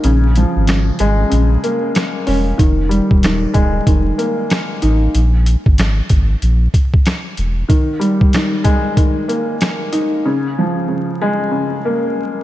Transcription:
0.04 A#1 C#3, closed hi-hat
0.35 F3, closed hi-hat
0.56 G#1
0.67 C#3, snare, closed hi-hat
0.99 G#1 G#3, closed hi-hat
1.30 A#1 C#3, closed hi-hat
1.64 A#3, closed hi-hat
1.95 snare, closed hi-hat
2.27 E1 C#4, open hi-hat
2.58 F1 D#3, kick, closed hi-hat
2.89 G3, closed hi-hat
3.11 D#1, kick
3.23 D#3, snare, closed hi-hat
3.54 D#1 G#3, kick, closed hi-hat
3.87 F1 D#3, kick, closed hi-hat
4.18 A#3, closed hi-hat
4.50 snare, closed hi-hat
4.82 A1 D#4, closed hi-hat
5.15 A#1, closed hi-hat
5.46 closed hi-hat
5.66 G#1, kick
5.78 snare, closed hi-hat
6.09 G#1, kick, closed hi-hat
6.42 A#1, closed hi-hat
6.74 kick, closed hi-hat
6.94 kick
7.06 snare, closed hi-hat
7.37 E1, closed hi-hat
7.69 D#3, kick, closed hi-hat
8.00 G3, closed hi-hat
8.21 kick
8.33 D#3, snare, closed hi-hat
8.64 G#3, kick, closed hi-hat
8.97 D#3, kick, closed hi-hat
9.28 A#3, closed hi-hat
9.61 snare, closed hi-hat
9.92 D#4, closed hi-hat
10.25 C#3
10.59 F3
10.88 C#3
11.22 G#3
11.51 C#3
11.85 A#3

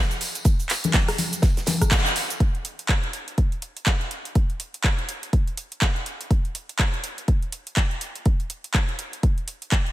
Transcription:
0.11 closed hi-hat, tambourine, cabasa
0.21 closed hi-hat, open hi-hat, tambourine
0.35 closed hi-hat, tambourine, cabasa
0.45 kick, closed hi-hat, tambourine, cabasa
0.60 closed hi-hat, tambourine, cabasa
0.69 clap, closed hi-hat, open hi-hat, tambourine
0.84 closed hi-hat, tambourine, high conga, cabasa
0.94 kick, snare, clap, closed hi-hat, tambourine, cabasa
1.08 cross-stick, open hi-hat, tambourine, cabasa
1.18 closed hi-hat, open hi-hat, tambourine, high conga
1.32 closed hi-hat, tambourine, cabasa
1.42 kick, snare, closed hi-hat, tambourine, cabasa
1.57 snare, closed hi-hat, tambourine, cabasa
1.66 snare, closed hi-hat, open hi-hat, tambourine, high conga
1.81 kick, cross-stick, closed hi-hat, tambourine, cabasa
1.91 kick, clap, closed hi-hat, tambourine, cabasa
2.06 closed hi-hat, tambourine, cabasa
2.16 open hi-hat, tambourine
2.30 closed hi-hat, tambourine, cabasa
2.40 kick, closed hi-hat
2.55 closed hi-hat
2.65 closed hi-hat
2.79 closed hi-hat
2.89 kick, clap, closed hi-hat
3.04 closed hi-hat
3.13 closed hi-hat
3.28 closed hi-hat
3.38 kick, closed hi-hat
3.52 closed hi-hat
3.62 closed hi-hat
3.77 closed hi-hat
3.86 kick, clap, closed hi-hat
4.01 closed hi-hat
4.11 closed hi-hat
4.25 closed hi-hat
4.35 kick, closed hi-hat
4.50 closed hi-hat
4.60 closed hi-hat
4.74 closed hi-hat
4.84 kick, clap, closed hi-hat
4.99 closed hi-hat
5.09 closed hi-hat
5.23 closed hi-hat
5.33 kick, closed hi-hat
5.47 closed hi-hat
5.57 closed hi-hat
5.72 closed hi-hat
5.82 kick, clap, closed hi-hat
5.96 closed hi-hat
6.06 closed hi-hat
6.21 closed hi-hat
6.31 kick, closed hi-hat
6.45 closed hi-hat
6.55 closed hi-hat
6.69 closed hi-hat
6.79 kick, clap, closed hi-hat
6.94 closed hi-hat
7.04 closed hi-hat
7.18 closed hi-hat
7.28 kick, closed hi-hat
7.42 closed hi-hat
7.52 closed hi-hat
7.67 closed hi-hat
7.77 kick, clap, closed hi-hat
7.91 closed hi-hat
8.01 closed hi-hat
8.15 closed hi-hat
8.25 kick, closed hi-hat
8.40 closed hi-hat
8.50 closed hi-hat
8.64 closed hi-hat
8.74 kick, clap, closed hi-hat
8.89 closed hi-hat
8.99 closed hi-hat
9.13 closed hi-hat
9.23 kick, closed hi-hat
9.38 closed hi-hat
9.48 closed hi-hat
9.62 closed hi-hat
9.72 kick, clap, closed hi-hat
9.86 closed hi-hat

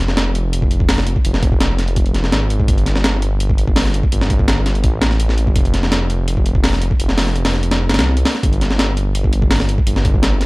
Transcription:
Already playing: F1
0.08 snare
0.17 snare, closed hi-hat
0.35 closed hi-hat
0.53 closed hi-hat
0.62 kick
0.71 closed hi-hat
0.80 kick
0.89 snare, open hi-hat
0.98 snare
1.07 closed hi-hat
1.16 kick
1.25 F1, closed hi-hat
1.34 snare
1.43 kick, closed hi-hat
1.52 kick
1.61 snare, closed hi-hat
1.79 snare, closed hi-hat
1.88 closed hi-hat
1.96 kick, closed hi-hat
2.06 closed hi-hat
2.14 F1, snare, closed hi-hat
2.24 snare
2.32 G#1, snare, closed hi-hat
2.50 closed hi-hat
2.60 kick
2.68 G1, kick, closed hi-hat
2.78 closed hi-hat
2.86 snare, closed hi-hat
2.96 snare
3.04 snare, closed hi-hat
3.22 closed hi-hat
3.40 closed hi-hat
3.50 kick
3.58 closed hi-hat
3.68 kick
3.76 snare, open hi-hat
3.85 snare
3.94 closed hi-hat
4.03 kick
4.12 G1, closed hi-hat
4.21 snare
4.30 kick, closed hi-hat
4.39 kick
4.48 snare, closed hi-hat
4.66 snare, closed hi-hat
4.75 closed hi-hat
4.84 A1, kick, closed hi-hat
5.02 snare, closed hi-hat
5.11 snare
5.20 closed hi-hat
5.29 snare
5.38 closed hi-hat
5.47 G1, kick
5.56 F1, kick, closed hi-hat
5.65 closed hi-hat
5.74 snare, closed hi-hat
5.83 snare
5.92 snare, closed hi-hat
6.10 closed hi-hat
6.28 closed hi-hat
6.37 kick
6.46 closed hi-hat
6.55 kick
6.64 snare, open hi-hat
6.73 snare
6.82 closed hi-hat
6.91 kick
6.99 F1, closed hi-hat
7.09 snare
7.18 snare, open hi-hat
7.27 snare
7.36 closed hi-hat
7.45 snare, open hi-hat
7.54 snare
7.63 closed hi-hat
7.71 snare, closed hi-hat
7.89 G1, snare, closed hi-hat
7.94 snare, closed hi-hat
7.99 C2, snare, closed hi-hat
8.17 closed hi-hat
8.25 snare, open hi-hat
8.35 snare
8.43 G1, kick, closed hi-hat
8.53 closed hi-hat
8.61 snare, closed hi-hat
8.71 snare
8.79 snare, closed hi-hat
8.97 closed hi-hat
9.15 closed hi-hat
9.24 kick
9.33 closed hi-hat
9.42 kick
9.51 snare, open hi-hat
9.60 snare
9.69 closed hi-hat
9.78 kick
9.87 G1, closed hi-hat
9.96 snare
10.05 kick, closed hi-hat
10.14 kick
10.23 snare, closed hi-hat
10.41 snare, closed hi-hat

